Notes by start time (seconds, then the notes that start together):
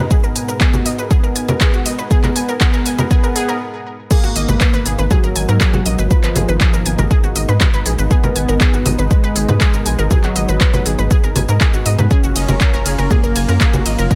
Already playing: G#2 B2 G#3 D#4 A#4
0.11 B3 G#4, kick, shaker
0.23 G#1 A#4, shaker
0.36 G#1 G#5, open hi-hat, shaker
0.48 G#1 A#4, shaker
0.61 G#4, kick, clap, shaker
0.73 G#1 F#4, low conga, shaker
0.86 G#1 D#5, open hi-hat, shaker
0.98 G#1 B4, shaker
1.11 B3 G#4, kick, shaker
1.23 G#1 A#4, shaker
1.36 G#1 G#5, open hi-hat, shaker
1.48 G#2 A#4, low conga, shaker
1.61 G#4, kick, clap, shaker
1.73 G#1 F#4, shaker
1.86 A#1 D#5, open hi-hat, shaker
1.98 G#1 B4, shaker
2.11 B3 G#4, kick, shaker
2.23 G#1 A#4, clap, low conga, shaker
2.36 G#1 G#5, open hi-hat, shaker
2.48 G#1 A#4, shaker
2.61 B3 G#4, kick, clap, shaker
2.73 G#1 A#4, shaker
2.86 G#1 G#5, open hi-hat, shaker
2.99 G#1 A#4, low conga, shaker
3.11 B3 G#4, kick, shaker
3.24 G#1 A#4, shaker
3.36 G#1 B3 G#4, open hi-hat, shaker
3.48 G#2 A#4, shaker
4.11 B2 G#3 A#3 D#4 G#4, kick, crash, shaker
4.24 G#1 F#4, shaker
4.36 G#1 D#5, open hi-hat, shaker
4.49 G#1 B4, low conga, shaker
4.61 B4, kick, clap, shaker
4.73 G#1 B4, shaker
4.86 G#1 G#4, open hi-hat, shaker
4.98 G#1 B4, shaker
5.11 F#3 G#4, kick, low conga, shaker
5.23 G#1 A#4, shaker
5.36 G#1 G#5, open hi-hat, shaker
5.49 G#2 A#4, shaker
5.61 G#4, kick, clap, shaker
5.73 G#1 F#4, low conga, shaker
5.86 A#1 D#5, open hi-hat, shaker
5.98 G#1 B4, shaker
6.11 F3 B4, kick, shaker
6.23 G#1 B4, clap, shaker
6.36 G#1 G#4, open hi-hat, low conga, shaker
6.48 G#1 B4, shaker
6.61 G#4, kick, clap, shaker
6.73 G#1 A#4, shaker
6.86 G#1 G#5, open hi-hat, shaker
6.99 G#1 A#4, low conga, shaker
7.11 G#4, kick, shaker
7.24 G#1 F#4, shaker
7.36 G#1 D#5, open hi-hat, shaker
7.49 G#2 B4, shaker
7.61 B4, kick, clap, low conga, shaker
7.73 G#1 B4, shaker
7.86 A#1 G#4, open hi-hat, shaker
7.99 G#1 B4, shaker
8.11 B3 G#4, kick, shaker
8.24 G#1 A#4, low conga, shaker
8.36 G#1 G#5, open hi-hat, shaker
8.48 G#1 A#4, shaker
8.61 G#4, kick, clap, shaker
8.74 G#1 F#4, shaker
8.86 G#1 D#5, open hi-hat, low conga, shaker
8.99 G#1 B4, shaker
9.11 G#3 B4, kick, shaker
9.24 G#1 B4, shaker
9.36 G#1 G#4, open hi-hat, shaker
9.49 G#2 B4, low conga, shaker
9.61 G#4, kick, clap, shaker
9.74 G#1 A#4, shaker
9.86 A#1 G#5, open hi-hat, shaker
9.99 G#1 A#4, shaker
10.11 F#3 G#4, kick, low conga, shaker
10.24 G#1 F#4, clap, shaker
10.36 G#1 D#5, open hi-hat, shaker
10.49 G#1 B4, shaker
10.61 B4, kick, clap, shaker
10.74 G#1 B4, low conga, shaker
10.86 G#1 G#4, open hi-hat, shaker
10.99 G#1 B4, shaker
11.11 G#4, kick, shaker
11.24 G#1 A#4, shaker
11.36 G#1 G#5, open hi-hat, low conga, shaker
11.49 G#2 A#4, shaker
11.61 G#4, kick, clap, shaker
11.74 G#1 F#4, shaker
11.86 G#2 D#5, open hi-hat, shaker
11.99 G#2 B4, low conga, shaker
12.11 C#3 F#3 C#4 F4 G#4 A#4, kick, shaker
12.24 F#1 F#4, shaker
12.36 F#1 D#5, open hi-hat, ride, shaker
12.48 F#1 A#4, low conga, shaker
12.61 A#4, kick, clap, shaker
12.74 F#1 A#4, shaker
12.86 F#1 G#4, open hi-hat, ride, shaker
12.98 F#1 A#4, shaker
13.11 A#3 G#4, kick, low conga, shaker
13.23 F#1 A#4, shaker
13.36 F#1 G#5, open hi-hat, ride, shaker
13.48 F#2 A#4, shaker
13.61 G#4, kick, clap, shaker
13.73 F#1 F#4, low conga, shaker
13.86 G#1 D#5, open hi-hat, ride, shaker
13.99 F#1 A#4, shaker
14.11 G#3 A#4, kick, shaker